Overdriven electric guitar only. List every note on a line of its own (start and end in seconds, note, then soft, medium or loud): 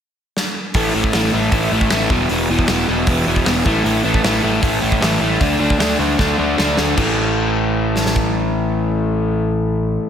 0.75 0.93 A2 medium
0.75 0.95 E3 loud
0.75 0.94 A3 loud
0.94 1.13 A2 medium
0.94 1.14 E3 medium
0.94 1.13 A3 medium
1.14 1.31 A2 medium
1.14 1.33 E3 loud
1.14 1.32 A3 loud
1.33 1.51 A2 medium
1.33 1.52 E3 medium
1.33 1.52 A3 medium
1.52 1.71 A2 medium
1.52 1.73 E3 medium
1.52 1.72 A3 medium
1.72 1.89 A2 medium
1.72 1.91 E3 medium
1.72 1.90 A3 loud
1.90 2.09 A2 loud
1.90 2.11 E3 loud
1.90 2.09 A3 loud
2.11 2.29 E2 medium
2.11 2.29 B2 medium
2.11 2.31 E3 medium
2.30 2.49 E2 medium
2.30 2.49 B2 medium
2.30 2.50 E3 medium
2.50 2.67 E2 medium
2.50 2.68 B2 medium
2.50 2.69 E3 medium
2.68 2.87 E2 loud
2.68 2.87 B2 medium
2.68 2.88 E3 loud
2.88 3.07 E2 medium
2.88 3.08 B2 medium
2.88 3.08 E3 medium
3.09 3.26 E2 medium
3.09 3.26 B2 loud
3.09 3.27 E3 medium
3.27 3.45 E2 medium
3.27 3.45 B2 medium
3.27 3.46 E3 medium
3.46 3.65 E2 medium
3.46 3.65 B2 loud
3.46 3.65 E3 loud
3.65 3.83 A2 medium
3.65 3.83 E3 medium
3.65 3.84 A3 loud
3.84 4.03 A2 loud
3.84 4.03 E3 medium
3.84 4.04 A3 loud
4.04 4.23 A2 medium
4.04 4.23 E3 medium
4.04 4.24 A3 medium
4.24 4.42 A2 loud
4.24 4.42 E3 loud
4.24 4.43 A3 loud
4.43 4.61 A2 medium
4.43 4.61 E3 medium
4.43 4.63 A3 medium
4.62 4.80 A2 medium
4.62 4.80 E3 medium
4.62 4.81 A3 medium
4.81 5.00 A2 medium
4.81 5.00 E3 medium
4.81 5.02 A3 medium
5.01 5.20 A2 medium
5.01 5.20 E3 loud
5.01 5.21 A3 loud
5.21 5.40 A2 medium
5.21 5.40 E3 medium
5.21 5.41 A3 medium
5.41 5.59 D3 medium
5.41 5.59 A3 loud
5.41 5.59 D4 medium
5.60 5.78 D3 medium
5.60 5.78 A3 medium
5.60 5.78 D4 medium
5.79 5.98 D3 loud
5.79 5.98 A3 loud
5.79 5.99 D4 loud
5.99 6.17 D3 medium
5.99 6.18 A3 medium
5.99 6.18 D4 medium
6.19 6.37 D3 medium
6.19 6.37 A3 loud
6.19 6.38 D4 medium
6.38 6.56 D3 medium
6.38 6.57 A3 medium
6.38 6.57 D4 medium
6.58 6.76 D3 medium
6.58 6.77 A3 medium
6.58 6.77 D4 loud
6.78 6.95 D3 medium
6.78 6.97 A3 medium
6.78 6.97 D4 medium
6.96 10.10 A2 medium
6.96 10.10 E3 medium
7.00 10.10 A3 loud